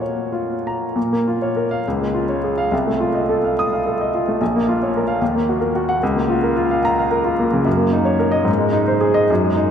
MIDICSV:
0, 0, Header, 1, 2, 480
1, 0, Start_track
1, 0, Key_signature, -5, "minor"
1, 0, Tempo, 636943
1, 727, Time_signature, 6, 3, 24, 8
1, 727, Tempo, 584795
1, 2167, Tempo, 562324
1, 3127, Tempo, 545951
1, 8283, End_track
2, 0, Start_track
2, 0, Title_t, "Grand piano"
2, 0, Program_c, 0, 0
2, 0, Control_c, 0, 64, 127
2, 0, Note_on_c, 0, 46, 48
2, 0, Note_on_c, 0, 58, 35
2, 0, Note_on_c, 0, 65, 35
2, 0, Note_on_c, 0, 66, 34
2, 0, Note_on_c, 0, 73, 42
2, 13, Note_off_c, 0, 73, 0
2, 13, Note_on_c, 0, 73, 33
2, 244, Note_off_c, 0, 65, 0
2, 244, Note_on_c, 0, 65, 35
2, 402, Note_off_c, 0, 73, 0
2, 505, Note_on_c, 0, 82, 49
2, 634, Note_off_c, 0, 65, 0
2, 702, Note_off_c, 0, 46, 0
2, 721, Note_on_c, 0, 46, 51
2, 732, Note_off_c, 0, 82, 0
2, 741, Control_c, 0, 64, 0
2, 744, Note_off_c, 0, 58, 0
2, 744, Note_off_c, 0, 66, 0
2, 856, Control_c, 0, 64, 127
2, 859, Note_on_c, 0, 58, 38
2, 982, Note_on_c, 0, 65, 38
2, 1044, Note_off_c, 0, 58, 0
2, 1101, Note_on_c, 0, 73, 39
2, 1167, Note_off_c, 0, 65, 0
2, 1220, Note_on_c, 0, 70, 40
2, 1289, Note_off_c, 0, 73, 0
2, 1339, Note_on_c, 0, 77, 51
2, 1409, Note_off_c, 0, 70, 0
2, 1427, Note_off_c, 0, 46, 0
2, 1457, Note_off_c, 0, 77, 0
2, 1467, Control_c, 0, 64, 0
2, 1477, Note_on_c, 0, 37, 45
2, 1587, Note_on_c, 0, 56, 36
2, 1592, Control_c, 0, 64, 127
2, 1694, Note_on_c, 0, 65, 41
2, 1772, Note_off_c, 0, 56, 0
2, 1815, Note_on_c, 0, 73, 38
2, 1884, Note_off_c, 0, 65, 0
2, 1938, Note_on_c, 0, 68, 39
2, 2004, Note_off_c, 0, 73, 0
2, 2050, Note_on_c, 0, 77, 51
2, 2123, Note_off_c, 0, 68, 0
2, 2158, Note_off_c, 0, 37, 0
2, 2164, Note_on_c, 0, 36, 53
2, 2167, Note_off_c, 0, 77, 0
2, 2183, Control_c, 0, 64, 0
2, 2298, Note_on_c, 0, 57, 36
2, 2312, Control_c, 0, 64, 127
2, 2410, Note_on_c, 0, 65, 42
2, 2484, Note_off_c, 0, 57, 0
2, 2529, Note_on_c, 0, 75, 39
2, 2600, Note_off_c, 0, 65, 0
2, 2658, Note_on_c, 0, 69, 45
2, 2719, Note_off_c, 0, 75, 0
2, 2786, Note_on_c, 0, 77, 41
2, 2845, Note_off_c, 0, 69, 0
2, 2911, Note_on_c, 0, 87, 60
2, 2969, Note_off_c, 0, 77, 0
2, 3028, Note_on_c, 0, 77, 41
2, 3091, Note_off_c, 0, 87, 0
2, 3148, Note_on_c, 0, 69, 44
2, 3212, Note_off_c, 0, 77, 0
2, 3274, Note_on_c, 0, 75, 42
2, 3335, Note_off_c, 0, 69, 0
2, 3394, Note_on_c, 0, 65, 40
2, 3459, Note_off_c, 0, 75, 0
2, 3512, Note_on_c, 0, 57, 42
2, 3580, Note_off_c, 0, 65, 0
2, 3582, Note_off_c, 0, 36, 0
2, 3623, Note_on_c, 0, 34, 52
2, 3627, Note_off_c, 0, 57, 0
2, 3636, Control_c, 0, 64, 0
2, 3757, Note_on_c, 0, 58, 42
2, 3768, Control_c, 0, 64, 127
2, 3868, Note_on_c, 0, 65, 46
2, 3940, Note_off_c, 0, 58, 0
2, 3992, Note_on_c, 0, 73, 40
2, 4053, Note_off_c, 0, 65, 0
2, 4115, Note_on_c, 0, 70, 44
2, 4172, Note_off_c, 0, 73, 0
2, 4210, Note_on_c, 0, 77, 53
2, 4291, Note_off_c, 0, 70, 0
2, 4308, Note_off_c, 0, 34, 0
2, 4326, Note_off_c, 0, 77, 0
2, 4332, Note_on_c, 0, 39, 50
2, 4343, Control_c, 0, 64, 0
2, 4458, Note_on_c, 0, 58, 40
2, 4462, Control_c, 0, 64, 127
2, 4575, Note_on_c, 0, 66, 44
2, 4639, Note_off_c, 0, 58, 0
2, 4679, Note_on_c, 0, 70, 44
2, 4758, Note_off_c, 0, 66, 0
2, 4807, Note_on_c, 0, 66, 47
2, 4870, Note_off_c, 0, 70, 0
2, 4924, Note_on_c, 0, 78, 60
2, 4994, Note_off_c, 0, 66, 0
2, 5019, Note_off_c, 0, 39, 0
2, 5041, Note_off_c, 0, 78, 0
2, 5050, Note_on_c, 0, 37, 61
2, 5051, Control_c, 0, 64, 0
2, 5158, Note_on_c, 0, 58, 43
2, 5167, Control_c, 0, 64, 127
2, 5284, Note_on_c, 0, 65, 45
2, 5350, Note_off_c, 0, 58, 0
2, 5402, Note_on_c, 0, 70, 46
2, 5474, Note_off_c, 0, 65, 0
2, 5517, Note_on_c, 0, 65, 51
2, 5593, Note_off_c, 0, 70, 0
2, 5646, Note_on_c, 0, 77, 47
2, 5711, Note_off_c, 0, 65, 0
2, 5769, Note_on_c, 0, 82, 67
2, 5835, Note_off_c, 0, 77, 0
2, 5894, Note_on_c, 0, 77, 49
2, 5957, Note_off_c, 0, 82, 0
2, 6002, Note_on_c, 0, 70, 49
2, 6080, Note_off_c, 0, 77, 0
2, 6116, Note_on_c, 0, 65, 50
2, 6194, Note_off_c, 0, 70, 0
2, 6245, Note_on_c, 0, 58, 45
2, 6312, Note_off_c, 0, 65, 0
2, 6370, Note_on_c, 0, 49, 47
2, 6437, Note_off_c, 0, 58, 0
2, 6454, Note_off_c, 0, 37, 0
2, 6473, Note_on_c, 0, 42, 61
2, 6487, Note_off_c, 0, 49, 0
2, 6499, Control_c, 0, 64, 0
2, 6577, Note_on_c, 0, 58, 43
2, 6649, Control_c, 0, 64, 127
2, 6716, Note_on_c, 0, 63, 47
2, 6783, Note_off_c, 0, 58, 0
2, 6826, Note_on_c, 0, 73, 47
2, 6913, Note_off_c, 0, 63, 0
2, 6952, Note_on_c, 0, 70, 53
2, 7027, Note_off_c, 0, 73, 0
2, 7058, Note_on_c, 0, 75, 64
2, 7150, Note_off_c, 0, 70, 0
2, 7174, Note_on_c, 0, 44, 58
2, 7176, Note_off_c, 0, 42, 0
2, 7190, Note_off_c, 0, 75, 0
2, 7218, Control_c, 0, 64, 0
2, 7295, Note_on_c, 0, 56, 45
2, 7366, Control_c, 0, 64, 127
2, 7421, Note_on_c, 0, 63, 51
2, 7497, Note_off_c, 0, 56, 0
2, 7552, Note_on_c, 0, 72, 52
2, 7620, Note_off_c, 0, 63, 0
2, 7668, Note_on_c, 0, 68, 53
2, 7747, Note_off_c, 0, 72, 0
2, 7786, Note_on_c, 0, 75, 68
2, 7866, Note_off_c, 0, 68, 0
2, 7884, Note_off_c, 0, 44, 0
2, 7914, Note_off_c, 0, 75, 0
2, 7925, Note_on_c, 0, 42, 64
2, 7936, Control_c, 0, 64, 0
2, 8053, Note_on_c, 0, 56, 43
2, 8083, Control_c, 0, 64, 127
2, 8156, Note_on_c, 0, 63, 49
2, 8243, Note_off_c, 0, 56, 0
2, 8283, Note_off_c, 0, 42, 0
2, 8283, Note_off_c, 0, 63, 0
2, 8283, End_track
0, 0, End_of_file